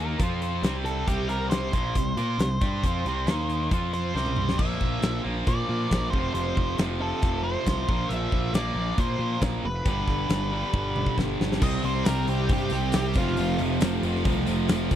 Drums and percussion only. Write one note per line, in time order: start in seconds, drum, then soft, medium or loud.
0.20 kick loud
0.20 closed hi-hat medium
0.42 closed hi-hat medium
0.64 snare loud
0.64 closed hi-hat medium
0.86 closed hi-hat medium
1.08 kick medium
1.08 closed hi-hat medium
1.29 closed hi-hat medium
1.51 snare loud
1.51 closed hi-hat medium
1.73 kick loud
1.73 closed hi-hat medium
1.95 kick medium
1.95 closed hi-hat medium
2.17 closed hi-hat medium
2.39 snare loud
2.39 closed hi-hat medium
2.61 kick loud
2.61 closed hi-hat medium
2.84 kick medium
2.84 closed hi-hat medium
3.06 closed hi-hat medium
3.27 snare loud
3.27 closed hi-hat medium
3.50 closed hi-hat medium
3.71 kick loud
3.71 closed hi-hat medium
3.94 closed hi-hat medium
4.17 snare medium
4.26 mid tom medium
4.36 mid tom medium
4.49 snare medium
4.59 kick loud
4.59 crash loud
4.81 kick medium
5.03 snare loud
5.03 closed hi-hat medium
5.47 kick loud
5.47 closed hi-hat medium
5.91 kick medium
5.91 snare loud
5.91 closed hi-hat medium
6.13 kick medium
6.35 closed hi-hat medium
6.57 kick medium
6.78 snare loud
6.78 closed hi-hat medium
7.22 kick loud
7.22 closed hi-hat medium
7.67 kick medium
7.67 snare loud
7.67 closed hi-hat medium
7.89 kick loud
8.10 closed hi-hat medium
8.32 kick medium
8.54 snare loud
8.54 closed hi-hat medium
8.98 kick loud
8.98 closed hi-hat medium
9.42 kick medium
9.42 snare loud
9.42 closed hi-hat medium
9.86 kick loud
9.86 closed hi-hat medium
10.08 kick medium
10.08 snare soft
10.30 snare loud
10.30 closed hi-hat medium
10.74 kick loud
10.96 mid tom medium
11.06 kick medium
11.18 kick medium
11.18 snare medium
11.41 snare medium
11.52 snare medium
11.62 kick loud
11.62 crash loud
11.62 tambourine medium
11.84 open hi-hat medium
12.05 snare loud
12.05 open hi-hat medium
12.05 tambourine loud
12.28 open hi-hat medium
12.28 tambourine medium
12.49 kick loud
12.49 open hi-hat medium
12.49 tambourine soft
12.70 open hi-hat medium
12.70 tambourine medium
12.92 snare loud
12.92 open hi-hat medium
12.92 tambourine loud
13.14 kick loud
13.14 open hi-hat medium
13.14 tambourine medium
13.27 snare soft
13.37 open hi-hat medium
13.37 tambourine medium
13.59 open hi-hat medium
13.81 snare loud
13.81 open hi-hat medium
13.81 tambourine loud
14.03 open hi-hat medium
14.03 tambourine medium
14.15 snare soft
14.25 kick loud
14.25 open hi-hat medium
14.25 tambourine soft
14.47 open hi-hat medium
14.47 tambourine medium
14.68 snare loud
14.68 open hi-hat medium
14.68 tambourine loud
14.91 kick medium
14.91 open hi-hat medium
14.91 tambourine medium